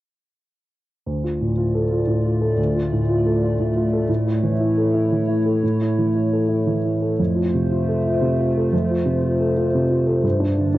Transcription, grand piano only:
1.06 D2
1.24 F4
1.41 A2
1.57 F4
1.75 A4
1.91 F4
2.07 A2
2.25 F4
2.41 A4
2.57 D2
2.75 F4
2.93 A2
3.09 F4
3.26 A4
3.42 F4
3.60 A2
3.76 F4
3.93 A4
4.09 A2
4.26 E4
4.43 E3
4.60 E4
4.77 A4
4.94 E4
5.12 E3
5.28 E4
5.46 A4
5.63 A2
5.81 E4
5.98 E3
6.15 E4
6.33 A4
6.49 E4
6.67 E3
6.85 E4
7.02 A4
7.19 F2
7.36 F4
7.54 C3
7.71 F4
7.88 A4
8.06 F4
8.21 C3
8.39 F4
8.57 A4
8.73 F2
8.90 F4
9.06 C3
9.24 F4
9.40 A4
9.56 F4
9.75 C3
9.90 F4
10.07 A4
10.23 G2
10.40 D4
10.58 D3
10.74 D4

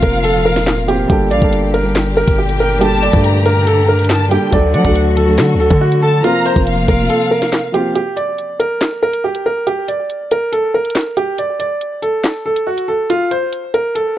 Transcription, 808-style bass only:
0.03 F1
1.10 G1
1.31 A#1
1.42 G1
2.28 G1
3.13 G2
4.53 D2
4.74 F#3
4.85 D2
5.38 D3
5.54 D2
5.70 D3
6.56 F1
6.88 F1

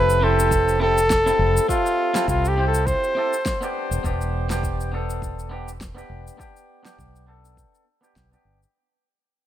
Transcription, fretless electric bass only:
Already playing: F1
1.39 F1
2.28 C2
3.91 E1
4.04 E1
6.10 E1
6.98 B1
8.16 B1
8.45 G1

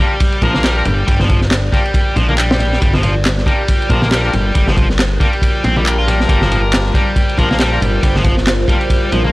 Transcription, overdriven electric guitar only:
0.00 G3
0.42 F3
0.55 A#3
0.64 G3
1.07 G3
1.20 F3
1.29 F3
1.73 G3
2.16 F3
2.28 A#3
2.38 G3
2.81 G3
2.94 F3
3.03 F3
3.47 G3
3.90 F3
4.03 A#3
4.12 G3
4.55 G3
4.67 F3
4.77 F3
5.20 G3
5.64 C4
5.76 G3
5.86 G3
5.98 F4
6.07 G3
6.29 G3
6.42 F3
6.51 F3
6.95 G3
7.38 F3
7.50 A#3
7.60 G3
8.03 G3
8.15 F3
8.24 F3
8.68 G3
9.12 F3
9.24 A#3

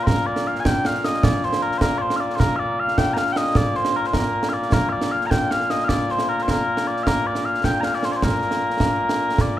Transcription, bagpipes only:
Already playing: A#2 A#3
0.03 A#4 C5
0.26 D5
0.47 F5
0.60 G#5
0.66 G5
0.86 F5
1.05 D#5
1.24 D5
1.44 C5
1.63 A#4
1.78 A#4 C5
1.98 C5 D5
2.16 D5 F5
2.35 C5
2.40 A#4
2.56 D5 F5
2.80 F5
2.98 G5
3.14 A#5
3.18 F5
3.32 G5
3.37 D#5
3.57 D5
3.76 C5
3.96 A#4
4.07 C5
4.14 A#4
4.49 F5
4.53 D5
4.73 A#4
4.89 D5 F5
5.12 F5
5.26 A#5
5.30 G5
5.51 F5
5.70 D#5
5.84 F5
5.89 D5
6.11 C5
6.29 A#4
6.42 C5
6.51 A#4
6.87 D5
7.03 A#4 F5
7.27 D5
7.45 F5
7.65 G5
7.81 F5 A#5
7.95 D5
8.05 C5
8.12 D5
8.16 C5
8.24 A#4
9.41 D5

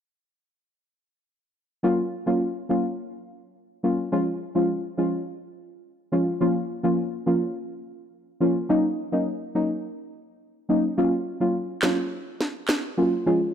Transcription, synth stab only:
1.83 F#3 A#3 C#4 F4
2.26 F#3 A#3 C#4 F4
2.69 F#3 A#3 C#4 F4
3.83 F#3 A#3 C#4 F4
4.12 F3 G#3 C#4 F4
4.55 F3 G#3 C#4 F4
4.97 F3 G#3 C#4 F4
6.12 F3 G#3 C#4 F4
6.40 F3 A#3 C#4 F4
6.83 F3 A#3 C#4 F4
7.26 F3 A#3 C#4 F4
8.40 F3 A#3 C#4 F4
8.69 F#3 A#3 C#4 D#4
9.12 F#3 A#3 C#4 D#4
9.55 F#3 A#3 C#4 D#4
10.69 F#3 A#3 C#4 D#4
10.97 F#3 A#3 C#4 F4
11.40 F#3 A#3 C#4 F4
11.83 F#3 A#3 C#4 F4
12.97 F#3 A#3 C#4 F4
13.26 F3 G#3 C#4 F4

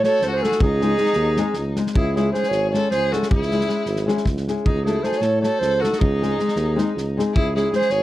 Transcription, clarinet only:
0.05 C#5
0.23 C5
0.33 C5
0.43 A4
0.63 G#4
1.96 G#4
2.16 G#4
2.33 C5
2.49 C#5
2.71 C#5
2.91 C5
3.13 A4
3.30 G#4
4.65 G#4
4.84 G#4
5.03 C5
5.18 C#5
5.41 C#5
5.59 C5
5.82 A4
5.98 G#4
7.36 G#4
7.57 G#4
7.76 C5
7.91 C#5

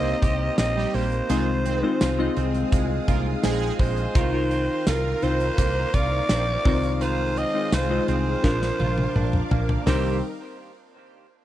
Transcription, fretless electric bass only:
Already playing: C2
0.23 C2
0.58 A#1
0.94 A#1
1.29 C2
2.01 C2
2.37 C2
2.72 C2
3.08 C2
3.44 A#1
3.79 A#1
4.15 C2
4.87 C2
5.23 C2
5.58 C2
5.94 C2
6.30 A#1
6.65 C2
7.72 C2
8.08 C2
8.44 A#1
8.80 A#1
9.15 A#1
9.51 A#1
9.87 C2

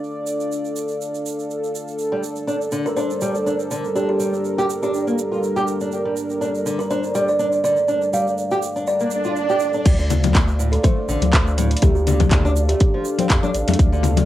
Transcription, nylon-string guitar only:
2.12 G3
2.47 D4
2.72 D3
2.97 D4
3.22 G3
3.46 D4
3.71 D3
3.95 D4
4.20 G3
4.58 G4
4.82 D4
5.07 A#3
5.31 F4
5.56 G4
5.81 D4
6.05 G3
6.41 D4
6.66 D3
6.91 D4
7.15 G3
7.40 D4
7.64 D3
7.88 D4
8.13 G3
8.51 G4
8.76 D4
9.01 A#3
9.25 F4
9.50 G4
9.74 D4
9.99 D3
10.35 A3
10.59 A2
10.84 A3
11.09 D3
11.33 A3
11.57 A2
11.82 A3
12.07 D3
12.45 D4
12.70 A3
12.94 F3
13.19 C4
13.43 D4
13.68 A3
13.92 D3

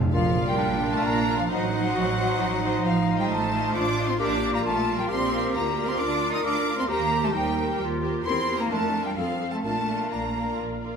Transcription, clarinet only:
0.12 F4
0.58 D4
1.49 D#4
1.95 F#4
2.40 D#4
3.73 F4
4.19 G4
4.65 F4
5.09 G4
5.98 F4
6.45 A#4
6.88 G4
7.34 D#4
7.80 F4
8.25 E4
8.70 D4
9.18 C4
9.65 D4

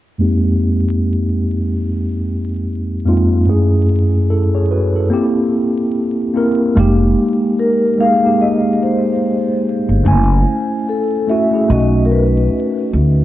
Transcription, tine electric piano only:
0.18 F2 G#3 A#3 C4 D#4 G4
3.05 F2 G#3 A#3 C4 D#4 F4
3.46 F#2 A3 C#4 E4 G#4
4.30 E4 A4
4.55 G#4 C#5
4.71 F#4 B4
4.96 E4 A4
5.10 A#3 C4 E4 G4
6.34 A#3 C4 E4 A#4
6.75 G#3 A#3 D#4
6.79 G4
7.98 G#3 A#3 D#4 G#4
8.22 G#3 A#3 D#4 G4
10.04 A3 C#4 E4 G#5
11.27 A3 C#4 E4 F#4
11.51 A3 C#4 E4 G#4
11.68 A3 C#4 D#4 F#4

